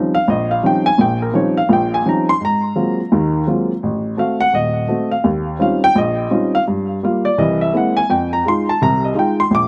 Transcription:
Already playing: F3 G3 C4 C#4 D#4
0.15 F5
0.28 A#1 D#5
0.51 F5
0.63 F3 G3 C4 C#4 D#4 G5
0.86 G#5
0.98 A#1 A#2 G5
1.22 A#4
1.33 F3 G3 C4 C#4 D#4 C#5
1.57 F5
1.69 A#1 A#2
1.73 G5
1.94 G#5
2.05 F3 G3 C4 C#4 D#4 A#5
2.29 C6
2.41 G#2
2.45 A#5
2.76 F#3 G#3 A#3 C4 F4
3.12 D#2 D#3
3.47 F#3 G#3 A#3 C4 F4
3.83 A1
4.17 A3 C4 F#4 F5
4.40 F#5
4.53 D#1 D#5
4.88 A3 C4 F#4
5.11 F5
5.24 D#2
5.59 G3 C4 C#4 D#4 F4 F5
5.84 G5
5.95 A#1 D#5
6.31 G3 C4 C#4 D#4 F4
6.55 F5
6.68 G2
7.03 G3 A#3 F4 F5
7.25 D5
7.38 C2 E3 D#5
7.61 E5
7.73 G#3 A#3 C4 E4 F#5
7.97 G#5
8.09 F2 G5
8.33 A#5
8.46 G#3 D#4 F4 C6
8.69 A5
8.82 C2 C3 A#5
9.04 D#5
9.14 G#3 D#4 F4
9.19 G5
9.40 C6
9.51 A#1
9.55 D6

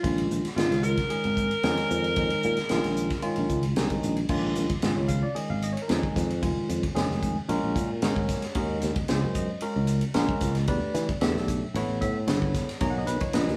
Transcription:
Already playing: F4
0.03 A#1 D#3 G#3 C#4 F4, kick, ride
0.18 ride
0.31 A#1, hi-hat pedal
0.45 muted fretless electric bass stroke, snare, ride
0.56 G#1 D#3 G#3 C#4 F4, snare, ride
0.71 C#2, snare, ride
0.83 A#4, hi-hat pedal
0.97 kick, snare, ride
1.10 D#3 G#3 C#4 G#4, ride
1.24 G#1, ride
1.37 kick, hi-hat pedal
1.51 ride
1.63 F2 D#3 G#3 C#4 D#4, snare, ride
1.77 snare, ride
1.90 F2, hi-hat pedal
2.04 ride
2.16 D#3 G#3 C#4 D#4, kick, ride
2.30 ride
2.43 A#2, hi-hat pedal
2.57 muted fretless electric bass stroke, snare, ride
2.69 A#1 D#3 G#3 C#4 F4, snare, ride
2.84 A#1, snare, ride
2.96 hi-hat pedal
3.10 kick, snare, ride
3.22 D#3 G#3 C#4 F4, ride
3.36 A#1, ride
3.49 C#2, kick, hi-hat pedal
3.63 ride
3.76 C2 D#3 G#3 C#4 D#4, snare, ride
3.90 kick, ride
4.03 A#1, hi-hat pedal
4.16 ride
4.29 A#1 D#3 G#3 C#4 F4, kick, crash
4.55 A#1, hi-hat pedal, ride
4.69 muted fretless electric bass stroke, kick, ride
4.82 G#1 D#3 G#3 C#4 F4 G#4, snare, ride
4.96 C#2 C#5
5.08 F5, kick, hi-hat pedal, ride
5.23 D5
5.35 D#3 G#3 C#4 G#4 D#5, ride
5.50 G#1 F5
5.62 D#5, hi-hat pedal, ride
5.73 C#5
5.77 ride
5.82 A#4
5.88 F2 D#3 G#3 C#4 D#4 G#4, snare, ride
6.03 kick
6.16 F2, kick, snare, hi-hat pedal, ride
6.30 ride
6.42 F1 D#3 G#3 C#4 F4, kick, ride
6.57 muted fretless electric bass stroke
6.69 F2, hi-hat pedal, ride
6.83 muted fretless electric bass stroke, kick, ride
6.95 F1 D#3 G#3 C#4 G#4, snare, ride
7.11 F1, snare
7.23 kick, hi-hat pedal, ride
7.49 A#1 G#3 C#4 F#4 A#4, ride
7.64 A#1
7.76 A#2, kick, hi-hat pedal, ride
8.02 G#1 G#3 C#4 F#4 A#4 C#5, snare, ride
8.16 kick
8.29 kick, snare, hi-hat pedal, ride
8.42 snare, ride
8.55 D#2 G#3 C#4 F#4 A#4 D#5, kick, ride
8.82 D#2, snare, hi-hat pedal, ride
8.96 kick, ride
9.08 C#2 G#3 C#4 F#4 C5, snare, ride
9.24 F#2
9.35 D#5, kick, hi-hat pedal, ride
9.61 G#3 C#4 F#4 A#4, ride
9.76 C#2
9.87 hi-hat pedal, ride
10.01 ride
10.14 A#1 G#3 C#4 F#4 A#4, snare, ride
10.29 kick
10.40 C#2, kick, snare, hi-hat pedal, ride
10.55 snare, ride
10.67 E2 A3 D4 G4 B4 D5, kick, ride
10.84 muted fretless electric bass stroke
10.95 E3, snare, hi-hat pedal, ride
11.09 muted fretless electric bass stroke, kick, ride
11.21 E2 A3 D4 G4 A4 E5, snare, ride
11.35 B1, snare
11.48 kick, hi-hat pedal, ride
11.74 A1 B3 E4 A4 C#5, ride
11.88 A1
12.01 A2 E5, kick, hi-hat pedal, ride
12.27 G1 B3 E4 A4 C#5, snare, ride
12.42 kick
12.54 kick, snare, hi-hat pedal, ride
12.69 snare, ride
12.80 B1 A#2 A#3 D#4 G#4 C#5 A#5, kick, ride
12.90 F#5
12.98 D#5
13.07 B1 B4, hi-hat pedal, ride
13.20 C#5, muted fretless electric bass stroke, kick, ride
13.33 A#1 A#2 D#4 G#4 B4 D#5, snare, ride
13.48 D#2, snare

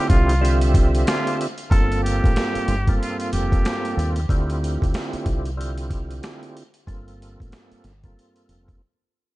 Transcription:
Already playing: D3 C4 E4 F4 G4
0.09 C2 F4, kick, closed hi-hat
0.29 closed hi-hat
0.41 D3 C4 F4 G4 E5, closed hi-hat
0.61 closed hi-hat
0.74 kick, closed hi-hat
0.95 closed hi-hat
1.07 F4, snare, closed hi-hat
1.27 closed hi-hat
1.41 closed hi-hat
1.58 closed hi-hat
1.70 G1 G2 A#3 C4 F4 A4, kick, closed hi-hat
1.92 closed hi-hat
2.03 G4, closed hi-hat
2.24 A1, kick, closed hi-hat
2.36 snare, closed hi-hat
2.55 muted fingered electric bass stroke, closed hi-hat
2.68 G1, closed hi-hat
2.87 G2 A#3 C4 F4 A4, kick, closed hi-hat
3.01 F4, closed hi-hat
3.19 F4, closed hi-hat
3.33 F1 G4, closed hi-hat
3.52 kick, closed hi-hat
3.65 snare, closed hi-hat
3.85 closed hi-hat
3.97 D#2, closed hi-hat
4.16 closed hi-hat
4.29 D2 D3 C4 E4 F4 G4, kick, closed hi-hat
4.50 closed hi-hat
4.64 closed hi-hat
4.82 D2, kick, closed hi-hat
4.94 snare, closed hi-hat
5.13 muted fingered electric bass stroke, closed hi-hat
5.26 C2, kick, closed hi-hat
5.45 closed hi-hat
5.57 D3 C4 E4 F4 G4, closed hi-hat
5.78 closed hi-hat
5.90 kick, closed hi-hat
6.11 closed hi-hat
6.23 snare, closed hi-hat
6.43 closed hi-hat
6.57 closed hi-hat
6.74 closed hi-hat
6.87 G1 G2 A#3 C4 F4 A4, kick, closed hi-hat
7.08 closed hi-hat
7.22 closed hi-hat
7.40 A1, kick, closed hi-hat
7.52 snare, closed hi-hat
7.71 muted fingered electric bass stroke, closed hi-hat
7.84 G1, snare, closed hi-hat
8.04 G2 A#3 C4 F4 A4, kick, closed hi-hat
8.19 closed hi-hat
8.36 closed hi-hat
8.49 F1, closed hi-hat
8.68 kick, closed hi-hat

